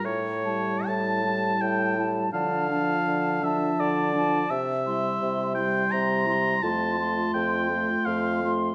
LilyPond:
<<
  \new Staff \with { instrumentName = "Flute" } { \time 3/4 \key d \minor \tempo 4 = 84 r8 a''4 a''4 a''8 | a''8 a''4 a''4 a''8 | r8 c'''4 c'''4 c'''8 | c'''8 c'''4 c'''4 c'''8 | }
  \new Staff \with { instrumentName = "Oboe" } { \time 3/4 \key d \minor cis''4 a''4 g''8 r8 | f''4. e''8 d''4 | e''4. g''8 bes''4 | a''4 g''4 f''8 r8 | }
  \new Staff \with { instrumentName = "Clarinet" } { \time 3/4 \key d \minor r8 e'4 e'4 e'8 | d'8 d'4 d'4 d'8 | r8 e'4 e'4 e'8 | f'8 f'4 f'4 f'8 | }
  \new Staff \with { instrumentName = "French horn" } { \clef bass \time 3/4 \key d \minor r8 g4 g4 g8 | f8 f4 f4 f8 | r8 g4 g4 g8 | a8 a4 a4 a8 | }
  \new Staff \with { instrumentName = "Bassoon" } { \clef bass \time 3/4 \key d \minor a,4 a,4 a,4 | d4 d4 d4 | c4 c4 c4 | f,4 f,4 f,4 | }
>>